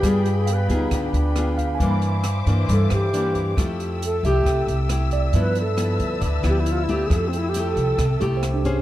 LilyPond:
<<
  \new Staff \with { instrumentName = "String section" } { \time 4/4 \key f \major \tempo 4 = 136 << { b''1 | <e'' d'''>1 | <e'' e'''>1~ | <e'' e'''>1~ |
<e'' e'''>1 | } \\ { <aes' g''>1 | c''1 | <a' g''>1 | <b' a''>1 |
<a' g''>1 | } >> }
  \new Staff \with { instrumentName = "Tine electric piano" } { \time 4/4 \key f \major f''16 r8. f''4~ f''16 r4 r16 f''16 aes''16 | b''4 r2. | r4. e''4~ e''16 r8. d''8~ | d''8 r2. r8 |
r2 r8 g'16 c''16 d'4 | }
  \new Staff \with { instrumentName = "Alto flute" } { \time 4/4 \key f \major \tuplet 3/2 { aes'8 g'8 aes'8 } b'8 ees'8 d'2 | r2 a'8 g'4. | r4 a'8 g'4. r4 | b'8 a'4. r8 g'16 e'16 f'16 e'16 g'16 aes'16 |
a'16 c'16 e'16 g'16 a'4. r4. | }
  \new Staff \with { instrumentName = "Nylon-string guitar" } { \time 4/4 \key f \major << { <b f' aes'>4 r8 <b f' aes'>4. <b f' aes'>4 | <e bes d'>4 r8 <e bes d'>4. <e bes d'>4 | <a e' g'>4 r8 <a e' g'>4. <a e' g'>4 | <f b e'>8 r8 <f b e'>4 r8 <f b e'>4 <a e' g'>8~ |
<a e' g'>4 <a e' g'>4 r8 <a e' g'>4 <des' aes' c''>8 | } \\ { g2 d2 | g,2 g,2 | f2 c2 | g,2 d2 |
f2 c2 | } >> }
  \new Staff \with { instrumentName = "Upright bass" } { \clef bass \time 4/4 \key f \major g,4. d,8 d,8 d,4. | g,4. g,8 g,8 g,4. | f,4. c,8 c,8 c,4. | g,4. d,8 d,8 d,4. |
f,4. c,8 c,8 c,4. | }
  \new DrumStaff \with { instrumentName = "Drums" } \drummode { \time 4/4 <hh bd ss>8 hh8 hh8 <hh bd>8 <hh bd ss>8 hh8 <hh ss>8 <hh bd>8 | <hh bd>8 hh8 <hh ss>8 <hh bd>8 <hh bd>8 <hh ss>8 hh8 <hh bd>8 | <hh bd ss>8 hh8 hh8 <hh bd>8 <hh bd ss>8 hh8 <hh ss>8 <hh bd>8 | <hh bd>8 hh8 <hh ss>8 <hh bd>8 <hh bd>8 <hh ss>8 hh8 <hh bd>8 |
<hh bd ss>8 hh8 hh8 <hh bd>8 <hh bd ss>8 hh8 <hh ss>8 <hh bd>8 | }
>>